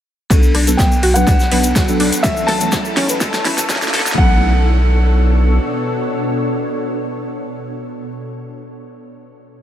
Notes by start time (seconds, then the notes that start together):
0.30 B1 F#3 B3 D4 F#4 A4 C#5 D5, kick, snare, closed hi-hat, ride, riser, shaker
0.43 shaker
0.55 B1 D4, cross-stick, open hi-hat, ride
0.67 F#3 B3 D4 A4, closed hi-hat, shaker
0.77 B1 B3 G5, kick, snare, closed hi-hat, ride, shaker
0.92 shaker
1.03 B1 F#4, open hi-hat, ride
1.14 F#3 B3 D4 B4 F#5, cross-stick, closed hi-hat, shaker
1.27 B1 D4, kick, snare, closed hi-hat, ride, shaker
1.40 snare, shaker
1.52 B1 F#3 B3 D4 B4, open hi-hat, ride
1.63 closed hi-hat, ride, shaker
1.76 B1 F#4, kick, snare, closed hi-hat, ride, shaker
1.88 F#3 B3 D4 A4, shaker
2.00 B1 D4, open hi-hat, ride
2.13 closed hi-hat, shaker
2.23 B1 E3 A3 C#4 E4 A4 E5, kick, snare, closed hi-hat, ride, shaker
2.37 shaker
2.47 B1 A4 A5, snare, open hi-hat, ride
2.60 E3 A3 C#4 A4, closed hi-hat, ride, shaker
2.72 B1 E4, kick, snare, closed hi-hat, ride, shaker
2.85 shaker
2.97 B1 C#4, snare, open hi-hat
3.09 E3 A3 C#4 B4, closed hi-hat, ride, shaker
3.20 B1 A4, kick, snare, closed hi-hat, ride, shaker
3.33 snare, shaker
3.45 B1 E3 A3 C#4 E4 B4, snare, open hi-hat, ride
3.58 snare, closed hi-hat, shaker
3.69 B1 C#4, kick, snare, closed hi-hat, ride, shaker
3.76 snare
3.82 E3 A3 C#4 A4, snare, ride, shaker
3.88 snare
3.93 B1 A4, snare, open hi-hat, ride
4.00 snare
4.06 snare, closed hi-hat, ride, shaker
4.12 snare
4.18 B1 B2 F#3 A3 B3 D4 A4 C#5 F#5, kick